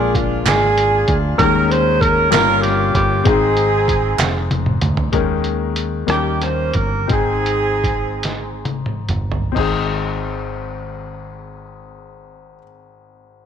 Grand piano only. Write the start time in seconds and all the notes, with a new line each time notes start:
Already playing: A#2 G#3 A#3 D4 F4 A#4
1.38 D#3 G3 A#3 C#4 D#4 A#4
1.44 G#3
2.30 G2 G3 A#3 C#4 F4 A#4
3.24 G#2 C4 D#4 G#4
5.12 D#3 G#3 A#3 C#4 D#4 A#4
6.06 D#3 G3 A#3 C#4 D#4 A#4
7.07 G#2 C4 D#4 G#4
9.52 G#1 C4 D#4
9.58 G#4